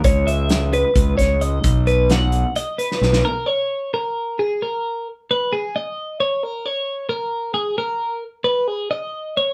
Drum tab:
HH |x-x-x-x-x-x-x-|x-x-x-x-x-x---|--------------|--------------|
SD |----o-----o---|----o------ooo|--------------|--------------|
BD |o-------o-o---|o-------------|--------------|--------------|

HH |--------------|--------------|
SD |--------------|--------------|
BD |--------------|--------------|